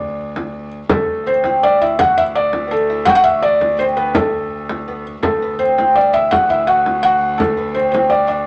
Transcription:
0.00 0.89 D2 medium
0.00 0.68 D5 medium
0.36 frame drum medium
0.89 5.23 D2 medium
0.89 1.26 A3 medium
0.89 1.28 A4 medium
0.89 frame drum medium
1.26 1.44 C4 medium
1.26 1.64 C5 medium
1.44 1.63 C4 medium
1.44 frame drum medium
1.63 1.81 D4 medium
1.63 1.81 D5 medium
1.81 1.99 E4 medium
1.81 2.00 E5 medium
1.99 2.17 F#4 medium
1.99 2.17 F#5 loud
1.99 frame drum medium
2.18 2.36 E4 medium
2.18 2.23 E5 medium
2.35 2.68 D4 medium
2.35 2.72 D5 medium
2.53 frame drum medium
2.68 2.72 B3 medium
2.68 3.05 A4 medium
2.72 2.90 A3 medium
2.90 3.07 E4 medium
3.05 3.16 F#4 medium
3.05 3.11 F#5 loud
3.05 frame drum medium
3.10 3.15 G5 medium
3.15 3.43 F#4 medium
3.15 3.25 F#5 loud
3.24 3.43 E5 medium
3.42 3.81 D4 medium
3.42 3.76 D5 medium
3.61 frame drum medium
3.79 3.97 C4 medium
3.79 3.84 C5 medium
3.97 4.14 B3 medium
3.97 4.14 B4 medium
4.15 4.87 A3 medium
4.15 5.02 A4 medium
4.15 frame drum medium
4.69 frame drum medium
4.88 5.05 B3 medium
4.88 frame drum soft
5.06 frame drum soft
5.23 8.47 D2 medium
5.23 5.42 A3 medium
5.23 5.60 A4 medium
5.23 frame drum medium
5.42 5.59 B3 medium
5.59 5.77 C4 medium
5.59 5.97 C5 medium
5.78 5.97 C4 medium
5.78 frame drum medium
5.95 6.13 D4 medium
5.95 6.12 D5 medium
6.13 6.31 E4 medium
6.13 6.32 E5 medium
6.31 6.49 F#4 medium
6.31 6.50 F#5 medium
6.31 frame drum medium
6.49 6.68 E4 medium
6.49 6.67 E5 medium
6.67 7.04 F#4 medium
6.67 7.01 F#5 medium
6.86 frame drum medium
7.03 7.42 F#4 medium
7.03 7.41 F#5 loud
7.38 7.57 A3 medium
7.38 7.76 A4 medium
7.38 frame drum medium
7.57 7.76 B3 medium
7.75 7.93 C4 medium
7.75 7.90 C5 medium
7.92 8.13 C4 medium
7.92 8.09 C5 medium
7.92 frame drum medium
8.10 8.28 D4 medium
8.10 8.26 D5 medium
8.28 8.47 D4 medium
8.28 8.47 D5 medium

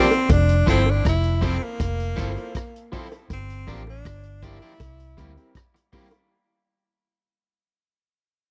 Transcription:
0.00 0.33 C4 medium
0.11 closed hi-hat soft
0.11 high bongo medium
0.29 0.64 F1 loud
0.29 0.68 D4 loud
0.29 kick loud
0.29 closed hi-hat medium
0.29 high bongo medium
0.49 closed hi-hat medium
0.66 1.02 G1 medium
0.66 0.81 F3 medium
0.66 0.81 C4 loud
0.66 0.92 C4 medium
0.66 0.82 E4 loud
0.66 0.82 E4 medium
0.66 0.83 F4 medium
0.66 0.82 A4 medium
0.66 0.83 A4 medium
0.66 0.83 C5 loud
0.66 kick medium
0.66 closed hi-hat medium
0.86 high bongo medium
0.90 1.07 D4 loud
1.05 1.58 F1 loud
1.05 1.47 E4 loud
1.05 kick loud
1.05 cross-stick loud
1.05 closed hi-hat medium
1.24 closed hi-hat medium
1.41 1.56 F3 medium
1.41 1.56 C4 medium
1.41 1.56 E4 medium
1.41 1.57 E4 medium
1.41 1.58 F4 medium
1.41 1.57 A4 medium
1.41 1.58 A4 medium
1.41 1.58 C5 medium
1.41 kick medium
1.41 closed hi-hat medium
1.46 1.64 C4 medium
1.63 2.93 A#3 loud
1.80 2.14 F1 medium
1.80 kick loud
1.80 cross-stick medium
1.80 closed hi-hat loud
1.80 high bongo medium
2.00 closed hi-hat medium
2.16 2.35 G1 medium
2.16 2.31 F3 medium
2.16 2.31 C4 medium
2.16 2.31 E4 medium
2.16 2.32 E4 medium
2.16 2.33 F4 medium
2.16 2.31 A4 medium
2.16 2.33 A4 medium
2.16 2.33 C5 loud
2.16 kick loud
2.16 closed hi-hat medium
2.35 2.51 E4 medium
2.35 2.51 F4 medium
2.35 2.51 A4 medium
2.35 2.51 C5 medium
2.35 muted clean electric guitar stroke soft
2.35 closed hi-hat soft
2.55 kick loud
2.55 cross-stick loud
2.55 closed hi-hat medium
2.76 closed hi-hat medium
2.92 3.06 F3 medium
2.92 3.07 C4 medium
2.92 3.07 E4 medium
2.92 3.07 F4 medium
2.92 3.08 A4 medium
2.92 3.07 A4 medium
2.92 3.08 C5 loud
2.92 kick medium
2.92 open hi-hat medium
2.92 low bongo medium
3.12 closed hi-hat soft
3.12 high bongo medium
3.30 3.65 G1 loud
3.30 3.84 C4 medium
3.30 kick loud
3.30 closed hi-hat medium
3.30 high bongo medium
3.50 closed hi-hat medium
3.67 4.02 A1 medium
3.67 3.81 F3 medium
3.67 3.82 A#3 medium
3.67 3.82 D4 medium
3.67 3.82 F4 medium
3.67 3.82 G4 medium
3.67 3.82 G4 loud
3.67 3.83 A#4 loud
3.67 kick medium
3.67 closed hi-hat medium
3.87 4.46 D4 medium
3.87 high bongo medium
4.05 4.58 G1 loud
4.05 kick loud
4.05 cross-stick loud
4.05 closed hi-hat medium
4.23 closed hi-hat medium
4.42 4.57 F3 medium
4.42 4.57 A#3 medium
4.42 4.57 D4 medium
4.42 5.56 E4 loud
4.42 4.57 F4 medium
4.42 4.57 G4 medium
4.42 4.57 G4 loud
4.42 4.58 A#4 loud
4.42 kick medium
4.42 closed hi-hat medium
4.62 4.73 F3 soft
4.62 4.73 A#3 medium
4.62 4.73 D4 medium
4.62 4.72 G4 medium
4.62 closed hi-hat soft
4.80 5.14 C2 loud
4.80 kick loud
4.80 cross-stick medium
4.80 closed hi-hat loud
4.80 high bongo medium
5.00 closed hi-hat medium
5.17 5.36 D2 medium
5.17 5.31 G3 medium
5.17 5.32 A#3 medium
5.17 5.32 C4 medium
5.17 5.32 E4 medium
5.17 5.32 G4 medium
5.17 5.33 A#4 loud
5.17 kick loud
5.17 closed hi-hat medium
5.36 5.51 C4 medium
5.36 5.51 E4 medium
5.36 5.51 G4 medium
5.36 5.51 A#4 medium
5.36 closed hi-hat soft
5.55 kick loud
5.55 cross-stick loud
5.55 closed hi-hat medium
5.74 muted clean electric guitar stroke soft
5.74 closed hi-hat medium
5.92 6.07 G3 medium
5.92 6.07 A#3 medium
5.92 6.07 C4 medium
5.92 6.07 E4 medium
5.92 6.08 E4 medium
5.92 6.07 G4 medium
5.92 6.08 G4 medium
5.92 6.08 A#4 loud
5.92 kick medium
5.92 open hi-hat medium
5.92 low bongo medium
6.11 closed hi-hat soft
6.11 high bongo medium

